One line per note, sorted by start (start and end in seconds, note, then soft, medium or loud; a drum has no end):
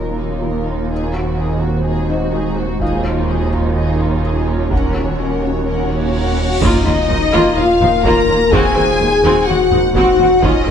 0.00 4.68 D#1 medium
0.00 2.77 D#2 soft
0.00 0.87 A#3 soft
0.00 0.87 A#3 medium
0.00 0.18 D#4 soft
0.00 2.77 D#4 medium
0.00 0.87 F4 soft
0.00 0.87 F4 medium
0.00 0.17 A#4 soft
0.00 0.87 A#4 medium
0.00 1.11 C#5 soft
0.00 0.17 F5 soft
0.19 0.43 D#4 soft
0.19 0.43 F4 soft
0.19 0.43 D#5 soft
0.42 0.67 D#4 soft
0.42 0.67 A#4 soft
0.42 0.66 F5 soft
0.66 0.90 D#4 soft
0.66 0.91 F4 soft
0.66 0.89 D#5 soft
0.90 4.72 G#3 medium
0.90 2.78 C4 soft
0.90 1.13 D#4 soft
0.90 2.81 F#4 medium
0.90 2.77 F#4 soft
0.90 1.13 G#4 soft
0.90 2.81 C5 medium
0.90 1.12 D#5 soft
1.14 1.38 F#4 soft
1.14 1.38 C5 soft
1.38 1.62 D#4 soft
1.38 1.62 G#4 soft
1.38 1.62 D#5 soft
1.61 1.86 F#4 soft
1.61 1.86 C5 soft
1.85 2.08 D#4 soft
1.85 2.08 G#4 soft
1.85 2.08 D#5 soft
2.09 3.49 D#4 soft
2.09 2.33 F#4 soft
2.09 2.34 F#4 soft
2.09 2.33 C5 soft
2.09 3.49 D#5 soft
2.33 2.57 D#4 soft
2.33 2.57 G#4 soft
2.33 2.57 D#5 soft
2.57 2.81 F#4 soft
2.57 2.81 C5 soft
2.80 6.38 D#2 medium
2.80 4.67 C#4 medium
2.80 6.62 C#4 medium
2.80 3.03 D#4 soft
2.80 4.67 F4 medium
2.80 4.71 F4 medium
2.80 4.20 F4 soft
2.80 3.03 G#4 medium
2.80 6.62 C#5 medium
2.80 3.03 D#5 soft
2.80 4.20 F5 soft
2.80 taiko medium
3.04 3.29 D#4 soft
3.04 3.29 F4 soft
3.04 3.28 C#5 soft
3.29 3.53 D#4 soft
3.29 3.53 G#4 soft
3.29 3.53 D#5 soft
3.52 3.76 D#4 soft
3.52 3.77 F4 soft
3.52 3.76 C#5 soft
3.52 taiko soft
3.76 3.99 D#4 soft
3.76 3.98 G#4 soft
3.76 3.99 D#5 soft
4.00 4.24 D#4 soft
4.00 4.25 F4 soft
4.00 4.24 C#5 soft
4.24 4.48 D#4 soft
4.24 4.48 G#4 soft
4.24 4.48 D#5 soft
4.47 4.71 D#4 soft
4.47 4.72 F4 soft
4.47 4.72 C#5 soft
4.70 6.58 D#1 medium
4.70 6.11 A#3 soft
4.70 6.61 A#3 medium
4.70 4.94 C#4 soft
4.70 6.62 F#4 medium
4.70 6.11 F#4 soft
4.70 4.93 A#4 soft
4.70 4.94 F#5 soft
4.70 6.11 F#5 soft
4.70 taiko medium
4.70 cymbal swell medium
4.95 5.19 F#4 soft
4.95 5.19 C#5 soft
5.19 5.43 C#4 soft
5.19 5.43 A#4 soft
5.19 5.43 F#5 soft
5.42 5.67 F#4 soft
5.42 5.67 C#5 soft
5.66 5.89 C#4 soft
5.66 5.89 A#4 soft
5.66 5.89 F#5 soft
5.90 6.15 F#4 soft
5.90 6.14 C#5 soft
5.90 6.15 C#5 soft
6.14 6.39 C#4 soft
6.14 6.59 F#4 medium
6.14 6.38 A#4 soft
6.14 6.58 F#5 medium
6.14 6.59 F#5 medium
6.37 6.62 F#4 soft
6.37 6.62 C#5 medium
6.61 10.71 D#1 medium
6.61 6.70 D#2 medium
6.61 6.84 A#3 medium
6.61 8.49 A#3 medium
6.61 10.71 D#4 medium
6.61 7.58 D#4 loud
6.61 6.84 F4 medium
6.61 8.49 F4 medium
6.61 8.49 A#4 medium
6.61 7.57 D#5 medium
6.61 7.56 D#5 medium
6.61 taiko loud
6.61 sub drop medium
6.86 6.94 D#2 medium
6.86 6.94 A#3 medium
6.86 6.94 F4 medium
7.09 7.18 D#2 medium
7.09 7.17 F3 medium
7.09 7.17 D#4 medium
7.33 7.41 D#2 medium
7.33 7.42 D#2 medium
7.33 7.56 A#3 medium
7.33 7.55 F4 medium
7.33 8.72 F5 soft
7.57 7.65 D#2 medium
7.57 7.65 A#3 medium
7.57 7.65 F4 medium
7.57 8.05 F4 medium
7.57 8.05 F5 medium
7.81 7.89 D#2 medium
7.81 7.89 F3 medium
7.81 7.89 D#4 medium
7.81 taiko mid medium
8.04 8.12 D#2 medium
8.04 8.13 D#2 medium
8.04 8.27 A#3 medium
8.04 8.27 F4 medium
8.04 8.53 A#4 loud
8.04 8.52 A#5 medium
8.04 taiko medium
8.28 8.36 D#2 medium
8.28 8.37 D#2 medium
8.28 8.37 A#3 medium
8.28 8.37 F4 medium
8.51 8.60 D#2 medium
8.51 8.61 D#2 medium
8.51 10.71 G#3 medium
8.51 8.75 C4 medium
8.51 10.43 F#4 medium
8.51 8.75 F#4 medium
8.51 9.48 G#4 loud
8.51 10.43 C5 medium
8.51 9.47 G#5 loud
8.51 9.48 G#5 medium
8.51 taiko loud
8.76 8.84 D#2 medium
8.76 8.85 D#2 medium
8.76 8.84 C4 medium
8.76 8.84 F#4 medium
8.76 10.15 C5 medium
9.00 9.08 D#2 medium
9.00 9.09 D#2 medium
9.00 9.09 G#3 medium
9.00 9.08 D#4 soft
9.23 9.31 D#2 medium
9.23 9.33 D#2 medium
9.23 9.46 C4 medium
9.23 9.46 F#4 medium
9.47 9.55 D#2 medium
9.47 9.56 D#2 medium
9.47 9.56 C4 medium
9.47 9.81 F#4 medium
9.47 9.56 F#4 medium
9.47 9.94 F#5 medium
9.47 9.95 F#5 medium
9.71 9.79 D#2 medium
9.71 9.80 D#2 medium
9.71 9.80 G#3 medium
9.71 9.80 D#4 medium
9.71 taiko mid medium
9.95 10.03 D#2 medium
9.95 10.04 D#2 medium
9.95 10.18 C4 medium
9.95 10.42 F#4 loud
9.95 10.18 F#4 medium
9.95 10.42 F#5 medium
9.95 taiko medium
10.19 10.27 D#2 medium
10.19 10.28 C4 medium
10.19 10.28 F#4 medium
10.42 10.50 D#2 medium
10.42 10.51 D#2 medium
10.42 10.65 C#4 medium
10.42 10.71 D#4 medium
10.42 10.65 F4 medium
10.42 10.71 F4 medium
10.42 10.71 C#5 medium
10.42 10.71 D#5 medium
10.42 taiko loud
10.67 10.71 D#2 medium
10.67 10.71 C#4 medium
10.67 10.71 F4 medium
10.67 10.71 A#4 medium